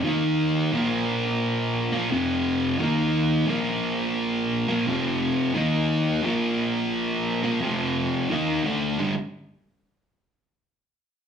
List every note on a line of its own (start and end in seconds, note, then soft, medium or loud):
0.04 0.72 D#3 medium
0.04 0.73 A#3 medium
0.04 0.74 D#4 medium
0.72 1.92 A#2 loud
0.72 1.93 F3 loud
0.72 1.91 A#3 loud
1.92 2.11 A#2 medium
1.92 2.10 F3 medium
1.92 2.09 A#3 loud
2.10 2.78 F2 loud
2.10 2.78 C3 loud
2.10 2.80 F3 loud
2.79 3.47 D#3 medium
2.79 3.48 A#3 loud
2.79 3.49 D#4 loud
3.48 4.68 A#2 loud
3.48 4.68 F3 loud
3.48 4.67 A#3 loud
4.68 4.87 A#2 medium
4.68 4.86 F3 medium
4.68 4.85 A#3 medium
4.86 5.54 F2 loud
4.86 5.54 C3 loud
4.86 5.56 F3 loud
5.54 6.22 D#3 medium
5.54 6.23 A#3 loud
5.54 6.24 D#4 loud
6.23 7.43 A#2 loud
6.23 7.44 F3 loud
6.23 7.43 A#3 loud
7.44 7.62 A#2 medium
7.44 7.61 F3 medium
7.44 7.60 A#3 medium
7.60 8.28 F2 loud
7.60 8.29 C3 loud
7.60 8.30 F3 loud
8.30 8.63 D#3 medium
8.30 8.64 A#3 medium
8.30 8.65 D#4 medium
8.64 8.97 D3 loud
8.64 8.98 A3 loud
8.64 8.99 D4 loud
8.98 9.12 G2 loud
8.98 9.13 D3 loud
8.98 9.13 G3 loud